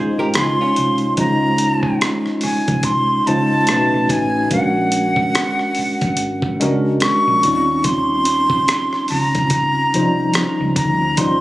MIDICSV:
0, 0, Header, 1, 7, 480
1, 0, Start_track
1, 0, Tempo, 833333
1, 677, Time_signature, 4, 2, 24, 8
1, 6570, End_track
2, 0, Start_track
2, 0, Title_t, "Flute"
2, 0, Program_c, 0, 73
2, 201, Note_on_c, 0, 84, 102
2, 656, Note_off_c, 0, 84, 0
2, 686, Note_on_c, 0, 82, 92
2, 1139, Note_off_c, 0, 82, 0
2, 1402, Note_on_c, 0, 80, 80
2, 1639, Note_on_c, 0, 84, 94
2, 1648, Note_off_c, 0, 80, 0
2, 1883, Note_on_c, 0, 81, 94
2, 1892, Note_off_c, 0, 84, 0
2, 2367, Note_on_c, 0, 80, 86
2, 2376, Note_off_c, 0, 81, 0
2, 2602, Note_off_c, 0, 80, 0
2, 2605, Note_on_c, 0, 78, 95
2, 3875, Note_off_c, 0, 78, 0
2, 4042, Note_on_c, 0, 85, 106
2, 4519, Note_on_c, 0, 84, 97
2, 4528, Note_off_c, 0, 85, 0
2, 5236, Note_off_c, 0, 84, 0
2, 5239, Note_on_c, 0, 82, 99
2, 6175, Note_off_c, 0, 82, 0
2, 6201, Note_on_c, 0, 82, 88
2, 6439, Note_on_c, 0, 84, 92
2, 6448, Note_off_c, 0, 82, 0
2, 6570, Note_off_c, 0, 84, 0
2, 6570, End_track
3, 0, Start_track
3, 0, Title_t, "Hollow-body jazz guitar"
3, 0, Program_c, 1, 26
3, 0, Note_on_c, 1, 68, 62
3, 0, Note_on_c, 1, 72, 72
3, 96, Note_off_c, 1, 72, 0
3, 98, Note_off_c, 1, 68, 0
3, 110, Note_on_c, 1, 70, 82
3, 113, Note_on_c, 1, 67, 70
3, 200, Note_off_c, 1, 70, 0
3, 201, Note_off_c, 1, 67, 0
3, 212, Note_on_c, 1, 68, 75
3, 216, Note_on_c, 1, 65, 69
3, 336, Note_off_c, 1, 68, 0
3, 338, Note_off_c, 1, 65, 0
3, 350, Note_on_c, 1, 65, 59
3, 355, Note_on_c, 1, 61, 55
3, 668, Note_off_c, 1, 65, 0
3, 670, Note_off_c, 1, 61, 0
3, 6570, End_track
4, 0, Start_track
4, 0, Title_t, "Tine electric piano"
4, 0, Program_c, 2, 4
4, 0, Control_c, 2, 64, 127
4, 0, Note_on_c, 2, 56, 84
4, 0, Note_on_c, 2, 61, 75
4, 0, Note_on_c, 2, 63, 79
4, 0, Note_on_c, 2, 65, 75
4, 0, Note_on_c, 2, 72, 100
4, 626, Note_off_c, 2, 56, 0
4, 627, Note_off_c, 2, 61, 0
4, 628, Note_off_c, 2, 63, 0
4, 630, Note_off_c, 2, 65, 0
4, 632, Note_off_c, 2, 72, 0
4, 679, Note_on_c, 2, 56, 65
4, 681, Note_on_c, 2, 61, 61
4, 685, Control_c, 2, 64, 0
4, 685, Note_on_c, 2, 63, 57
4, 687, Note_on_c, 2, 65, 54
4, 691, Note_on_c, 2, 72, 62
4, 801, Control_c, 2, 64, 127
4, 1585, Note_off_c, 2, 56, 0
4, 1586, Note_off_c, 2, 61, 0
4, 1588, Note_off_c, 2, 63, 0
4, 1589, Note_off_c, 2, 65, 0
4, 1591, Note_off_c, 2, 72, 0
4, 1881, Note_on_c, 2, 56, 66
4, 1883, Note_on_c, 2, 61, 66
4, 1888, Note_on_c, 2, 63, 64
4, 1890, Note_on_c, 2, 65, 66
4, 1893, Note_on_c, 2, 72, 75
4, 2116, Note_off_c, 2, 61, 0
4, 2119, Note_off_c, 2, 56, 0
4, 2119, Note_off_c, 2, 63, 0
4, 2119, Note_on_c, 2, 57, 67
4, 2123, Note_off_c, 2, 65, 0
4, 2123, Note_on_c, 2, 61, 61
4, 2125, Note_off_c, 2, 72, 0
4, 2125, Control_c, 2, 64, 0
4, 2126, Note_on_c, 2, 63, 63
4, 2129, Note_on_c, 2, 66, 68
4, 2132, Note_on_c, 2, 71, 77
4, 2243, Control_c, 2, 64, 127
4, 2572, Note_off_c, 2, 57, 0
4, 2574, Note_off_c, 2, 61, 0
4, 2575, Note_off_c, 2, 63, 0
4, 2577, Note_off_c, 2, 66, 0
4, 2578, Note_off_c, 2, 71, 0
4, 2603, Note_on_c, 2, 56, 66
4, 2604, Control_c, 2, 64, 0
4, 2606, Note_on_c, 2, 61, 57
4, 2609, Note_on_c, 2, 62, 54
4, 2611, Note_on_c, 2, 66, 60
4, 2615, Note_on_c, 2, 70, 70
4, 2716, Control_c, 2, 64, 127
4, 3507, Note_off_c, 2, 56, 0
4, 3509, Note_off_c, 2, 61, 0
4, 3510, Note_off_c, 2, 62, 0
4, 3511, Note_off_c, 2, 66, 0
4, 3513, Note_off_c, 2, 70, 0
4, 3802, Note_on_c, 2, 56, 81
4, 3804, Note_on_c, 2, 61, 77
4, 3809, Note_on_c, 2, 62, 76
4, 3811, Note_on_c, 2, 66, 77
4, 3815, Note_on_c, 2, 70, 90
4, 4278, Note_off_c, 2, 61, 0
4, 4280, Note_off_c, 2, 56, 0
4, 4282, Note_on_c, 2, 55, 73
4, 4283, Note_off_c, 2, 62, 0
4, 4284, Note_off_c, 2, 66, 0
4, 4284, Control_c, 2, 64, 0
4, 4285, Note_on_c, 2, 61, 63
4, 4286, Note_off_c, 2, 70, 0
4, 4289, Note_on_c, 2, 63, 68
4, 4291, Note_on_c, 2, 65, 68
4, 4296, Note_on_c, 2, 60, 81
4, 4393, Control_c, 2, 64, 127
4, 5187, Note_off_c, 2, 55, 0
4, 5188, Note_off_c, 2, 61, 0
4, 5190, Note_off_c, 2, 63, 0
4, 5191, Note_off_c, 2, 65, 0
4, 5193, Note_off_c, 2, 60, 0
4, 5722, Note_on_c, 2, 53, 58
4, 5726, Note_on_c, 2, 61, 68
4, 5730, Note_on_c, 2, 63, 68
4, 5733, Note_on_c, 2, 65, 63
4, 5736, Note_on_c, 2, 72, 79
4, 5761, Note_on_c, 2, 55, 73
4, 5763, Note_off_c, 2, 53, 0
4, 6402, Note_off_c, 2, 61, 0
4, 6404, Note_off_c, 2, 63, 0
4, 6405, Note_off_c, 2, 65, 0
4, 6407, Note_off_c, 2, 72, 0
4, 6419, Note_off_c, 2, 55, 0
4, 6443, Note_on_c, 2, 55, 66
4, 6447, Note_on_c, 2, 61, 57
4, 6449, Note_on_c, 2, 63, 60
4, 6452, Note_on_c, 2, 65, 58
4, 6456, Note_on_c, 2, 72, 77
4, 6570, Note_off_c, 2, 55, 0
4, 6570, Note_off_c, 2, 61, 0
4, 6570, Note_off_c, 2, 63, 0
4, 6570, Note_off_c, 2, 65, 0
4, 6570, Note_off_c, 2, 72, 0
4, 6570, End_track
5, 0, Start_track
5, 0, Title_t, "Fingered electric bass"
5, 0, Program_c, 3, 33
5, 104, Note_on_c, 3, 32, 80
5, 188, Note_off_c, 3, 32, 0
5, 209, Note_on_c, 3, 37, 84
5, 323, Note_off_c, 3, 37, 0
5, 449, Note_on_c, 3, 36, 78
5, 651, Note_off_c, 3, 36, 0
5, 683, Note_on_c, 3, 37, 81
5, 1096, Note_off_c, 3, 37, 0
5, 1551, Note_on_c, 3, 36, 74
5, 1840, Note_off_c, 3, 36, 0
5, 1890, Note_on_c, 3, 37, 75
5, 2092, Note_off_c, 3, 37, 0
5, 2128, Note_on_c, 3, 35, 82
5, 2243, Note_off_c, 3, 35, 0
5, 2268, Note_on_c, 3, 35, 89
5, 2351, Note_off_c, 3, 35, 0
5, 2363, Note_on_c, 3, 33, 78
5, 2568, Note_off_c, 3, 33, 0
5, 2604, Note_on_c, 3, 34, 89
5, 3016, Note_off_c, 3, 34, 0
5, 3472, Note_on_c, 3, 32, 78
5, 3760, Note_off_c, 3, 32, 0
5, 3814, Note_on_c, 3, 37, 84
5, 4014, Note_off_c, 3, 37, 0
5, 4189, Note_on_c, 3, 34, 87
5, 4271, Note_off_c, 3, 34, 0
5, 4291, Note_on_c, 3, 39, 91
5, 5115, Note_off_c, 3, 39, 0
5, 5250, Note_on_c, 3, 37, 89
5, 5660, Note_off_c, 3, 37, 0
5, 5731, Note_on_c, 3, 36, 86
5, 5932, Note_off_c, 3, 36, 0
5, 6108, Note_on_c, 3, 37, 89
5, 6190, Note_off_c, 3, 37, 0
5, 6204, Note_on_c, 3, 38, 77
5, 6445, Note_off_c, 3, 38, 0
5, 6445, Note_on_c, 3, 39, 100
5, 6570, Note_off_c, 3, 39, 0
5, 6570, End_track
6, 0, Start_track
6, 0, Title_t, "Muted fingered electric bass strokes"
6, 1408, Note_on_c, 9, 29, 41
6, 1465, Note_off_c, 9, 29, 0
6, 3333, Note_on_c, 9, 29, 45
6, 3390, Note_off_c, 9, 29, 0
6, 4054, Note_on_c, 9, 29, 41
6, 4111, Note_off_c, 9, 29, 0
6, 6570, End_track
7, 0, Start_track
7, 0, Title_t, "Drums"
7, 194, Note_on_c, 9, 42, 70
7, 204, Note_on_c, 9, 37, 105
7, 252, Note_off_c, 9, 42, 0
7, 262, Note_off_c, 9, 37, 0
7, 440, Note_on_c, 9, 42, 72
7, 497, Note_off_c, 9, 42, 0
7, 565, Note_on_c, 9, 42, 32
7, 623, Note_off_c, 9, 42, 0
7, 675, Note_on_c, 9, 42, 75
7, 678, Note_on_c, 9, 36, 91
7, 732, Note_off_c, 9, 42, 0
7, 735, Note_off_c, 9, 36, 0
7, 912, Note_on_c, 9, 42, 70
7, 970, Note_off_c, 9, 42, 0
7, 1053, Note_on_c, 9, 36, 75
7, 1111, Note_off_c, 9, 36, 0
7, 1159, Note_on_c, 9, 42, 64
7, 1163, Note_on_c, 9, 37, 97
7, 1217, Note_off_c, 9, 42, 0
7, 1221, Note_off_c, 9, 37, 0
7, 1300, Note_on_c, 9, 37, 31
7, 1358, Note_off_c, 9, 37, 0
7, 1388, Note_on_c, 9, 46, 46
7, 1403, Note_on_c, 9, 37, 31
7, 1445, Note_off_c, 9, 46, 0
7, 1460, Note_off_c, 9, 37, 0
7, 1543, Note_on_c, 9, 42, 32
7, 1544, Note_on_c, 9, 36, 86
7, 1600, Note_off_c, 9, 42, 0
7, 1602, Note_off_c, 9, 36, 0
7, 1630, Note_on_c, 9, 42, 61
7, 1633, Note_on_c, 9, 36, 84
7, 1687, Note_off_c, 9, 42, 0
7, 1690, Note_off_c, 9, 36, 0
7, 1884, Note_on_c, 9, 42, 52
7, 1942, Note_off_c, 9, 42, 0
7, 2113, Note_on_c, 9, 42, 74
7, 2123, Note_on_c, 9, 37, 94
7, 2171, Note_off_c, 9, 42, 0
7, 2181, Note_off_c, 9, 37, 0
7, 2358, Note_on_c, 9, 36, 82
7, 2360, Note_on_c, 9, 42, 66
7, 2415, Note_off_c, 9, 36, 0
7, 2417, Note_off_c, 9, 42, 0
7, 2596, Note_on_c, 9, 42, 78
7, 2598, Note_on_c, 9, 36, 93
7, 2654, Note_off_c, 9, 42, 0
7, 2656, Note_off_c, 9, 36, 0
7, 2832, Note_on_c, 9, 42, 78
7, 2890, Note_off_c, 9, 42, 0
7, 2974, Note_on_c, 9, 36, 74
7, 3031, Note_off_c, 9, 36, 0
7, 3080, Note_on_c, 9, 42, 66
7, 3084, Note_on_c, 9, 37, 92
7, 3138, Note_off_c, 9, 42, 0
7, 3142, Note_off_c, 9, 37, 0
7, 3222, Note_on_c, 9, 37, 29
7, 3279, Note_off_c, 9, 37, 0
7, 3310, Note_on_c, 9, 46, 44
7, 3368, Note_off_c, 9, 46, 0
7, 3464, Note_on_c, 9, 42, 34
7, 3466, Note_on_c, 9, 36, 86
7, 3522, Note_off_c, 9, 42, 0
7, 3524, Note_off_c, 9, 36, 0
7, 3552, Note_on_c, 9, 42, 68
7, 3610, Note_off_c, 9, 42, 0
7, 3700, Note_on_c, 9, 36, 83
7, 3757, Note_off_c, 9, 36, 0
7, 3806, Note_on_c, 9, 42, 54
7, 3864, Note_off_c, 9, 42, 0
7, 4034, Note_on_c, 9, 42, 68
7, 4044, Note_on_c, 9, 37, 100
7, 4092, Note_off_c, 9, 42, 0
7, 4102, Note_off_c, 9, 37, 0
7, 4281, Note_on_c, 9, 42, 68
7, 4339, Note_off_c, 9, 42, 0
7, 4516, Note_on_c, 9, 42, 78
7, 4519, Note_on_c, 9, 36, 96
7, 4574, Note_off_c, 9, 42, 0
7, 4577, Note_off_c, 9, 36, 0
7, 4754, Note_on_c, 9, 42, 77
7, 4812, Note_off_c, 9, 42, 0
7, 4894, Note_on_c, 9, 36, 83
7, 4952, Note_off_c, 9, 36, 0
7, 5000, Note_on_c, 9, 42, 70
7, 5004, Note_on_c, 9, 37, 99
7, 5058, Note_off_c, 9, 42, 0
7, 5062, Note_off_c, 9, 37, 0
7, 5142, Note_on_c, 9, 37, 31
7, 5200, Note_off_c, 9, 37, 0
7, 5230, Note_on_c, 9, 46, 44
7, 5245, Note_on_c, 9, 37, 36
7, 5288, Note_off_c, 9, 46, 0
7, 5303, Note_off_c, 9, 37, 0
7, 5384, Note_on_c, 9, 42, 33
7, 5386, Note_on_c, 9, 36, 85
7, 5441, Note_off_c, 9, 42, 0
7, 5444, Note_off_c, 9, 36, 0
7, 5472, Note_on_c, 9, 42, 65
7, 5475, Note_on_c, 9, 36, 78
7, 5529, Note_off_c, 9, 42, 0
7, 5532, Note_off_c, 9, 36, 0
7, 5725, Note_on_c, 9, 42, 57
7, 5783, Note_off_c, 9, 42, 0
7, 5953, Note_on_c, 9, 42, 66
7, 5963, Note_on_c, 9, 37, 95
7, 6011, Note_off_c, 9, 42, 0
7, 6021, Note_off_c, 9, 37, 0
7, 6198, Note_on_c, 9, 36, 83
7, 6199, Note_on_c, 9, 42, 71
7, 6256, Note_off_c, 9, 36, 0
7, 6257, Note_off_c, 9, 42, 0
7, 6435, Note_on_c, 9, 42, 80
7, 6439, Note_on_c, 9, 36, 97
7, 6493, Note_off_c, 9, 42, 0
7, 6496, Note_off_c, 9, 36, 0
7, 6570, End_track
0, 0, End_of_file